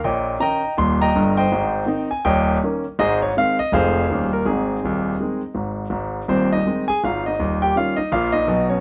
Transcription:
X:1
M:4/4
L:1/8
Q:"Swing" 1/4=163
K:Ab
V:1 name="Grand piano"
[deg]2 [egb]2 c' [egb]2 [ceg]- | [ceg]3 a [deg]2 z2 | [Ace] d f e [Acf]3 B | [CEA]6 z2 |
z2 [Cc] [Ee]2 [Aa] [Ff] [Ee]- | [Ee] [Gg] [Ff] [Ee] [Ff] [Ee]2 [Dd] |]
V:2 name="Grand piano" clef=bass
[B,,,B,,]2 [E,DE]2 [E,,,E,,]2 [G,,,G,,]2 | [A,,,A,,]2 [E,CE]2 [E,,,E,,]2 [E,B,D]2 | [A,,,A,,]2 [E,A,C]2 [F,,,F,,E,A,C]2 [E,,,E,,E,G,D]2 | [A,,,A,,]2 [E,,,E,,]2 [E,A,C]2 [A,,,A,,]2 |
[A,,,A,,]2 [E,,,E,,]2 [E,A,C]2 [A,,,A,,]2 | [E,,,E,,]2 [E,G,D]2 [B,,,B,,]2 [_C,,_C,]2 |]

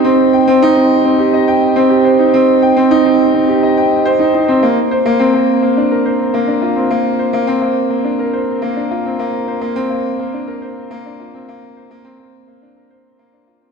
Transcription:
X:1
M:4/4
L:1/16
Q:1/4=105
K:Bbmix
V:1 name="Grand piano"
C z g C E C z C G e g z C G c E | C z g C E C z C G e g z c E E C | B, z c B, C B, z B, D B c z B, D F C | B, z c B, C B, z B, D B c z B, D F C |
B, z c B, C B, z B, D B c z B, D F C | B, z c B, C B, z B, D B c z B, D F C |]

